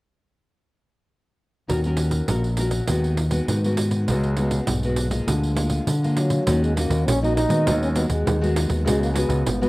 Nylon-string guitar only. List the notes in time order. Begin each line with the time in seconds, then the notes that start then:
1.68 D#3 C#4 F#4 A#4
1.86 C#4 F#4 A#4
2.29 A#2 C#4 F#4 A#4
2.59 C#4 F#4 A#4
2.88 D#3 G#3 B3 F#4
3.31 G#3 B3 F#4
3.50 D#3
3.65 G#3 B3 F#4
4.09 C#3 G#3 B3 F#4
4.38 G#3 B3 F#4
4.68 G#2
4.84 G#3 B3 F#4
5.10 G#3 A#3 F4
5.27 D3
5.55 G#3 A#3 F4
5.87 D3
6.03 G#3 A#3 F4
6.48 D#3 A#3 C#4 F#4
6.76 A#3 C#4 F#4
7.08 A#2
7.23 A#3 C#4 F#4
7.48 G#3 B3 F#4
7.66 D#3
7.95 G#3 B3 F#4
8.26 D#3
8.41 G#3 B3 F#4
8.85 C#3 G#3 B3 F#4
9.13 G#3 B3 F#4
9.45 G#2
9.61 G#3 B3 F#4